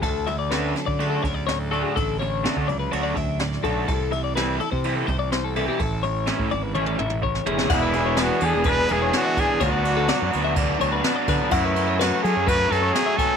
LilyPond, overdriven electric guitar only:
\new Staff \with { instrumentName = "Overdriven electric guitar" } { \time 4/4 \key d \lydian \tempo 4 = 125 r4 <d a d' fis'>8 r8 <d a d' fis'>8 r4 <d a d' fis'>8 | r4 <d a d' fis'>8 r8 <d a d' fis'>8 r4 <d a d' fis'>8 | r4 <e g c' e'>8 r8 <e g c' e'>8 r4 <e g c' e'>8 | r4 <e a cis' e'>8 r8 <e a cis' e'>8 r4 <e a cis' e'>8 |
<e b d' gis'>8 <b d' gis'>8 <e b d' gis'>8 <b d' gis'>8 <e b d' gis'>8 <b d' gis'>8 <e b d' gis'>4 | <d fis b d' fis'>8 <b d' fis'>8 <fis b d' fis'>8 <b d' fis'>8 <d fis b d' fis'>8 <b d' fis'>8 <fis b d' fis'>4 | <fis a cis' fis'>8 <a cis' fis'>8 <fis a cis' fis'>8 <a cis' fis'>8 <fis a cis' fis'>8 <a cis' fis'>8 <fis a cis' fis'>4 | }